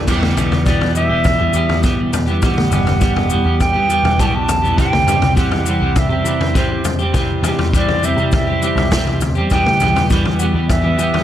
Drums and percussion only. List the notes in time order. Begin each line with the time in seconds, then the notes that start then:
0.07 kick, floor tom, crash, maracas
0.23 mid tom
0.37 floor tom, maracas
0.52 floor tom, maracas
0.66 kick, maracas
0.81 floor tom
0.95 maracas
1.24 kick, floor tom, maracas
1.53 maracas
1.69 floor tom
1.83 kick, maracas
2.13 floor tom, maracas
2.27 maracas
2.42 kick, floor tom, maracas
2.58 mid tom
2.72 floor tom, maracas
2.87 floor tom, maracas
3.01 kick, maracas
3.16 floor tom
3.30 maracas
3.60 kick, floor tom, maracas
3.90 maracas
4.05 floor tom
4.19 kick, maracas
4.49 floor tom, maracas
4.65 maracas
4.78 kick, floor tom, maracas
4.93 mid tom
5.08 floor tom, maracas
5.22 floor tom, maracas
5.37 kick, maracas
5.51 floor tom
5.66 maracas
5.96 kick, floor tom, maracas
6.26 maracas
6.41 floor tom
6.55 kick, maracas
6.84 floor tom, maracas
6.99 maracas
7.14 kick, floor tom, maracas
7.44 floor tom, maracas
7.59 floor tom
7.74 kick, maracas
7.88 floor tom
8.03 maracas
8.18 maracas
8.32 kick, floor tom, maracas
8.62 maracas
8.77 floor tom, maracas
8.92 kick, snare, floor tom, maracas
9.07 floor tom
9.21 floor tom, maracas
9.35 maracas
9.50 kick, floor tom, maracas
9.66 mid tom
9.80 floor tom, maracas
9.96 floor tom, maracas
10.10 kick, maracas
10.25 floor tom
10.39 maracas
10.69 kick, floor tom, maracas
10.99 maracas
11.14 floor tom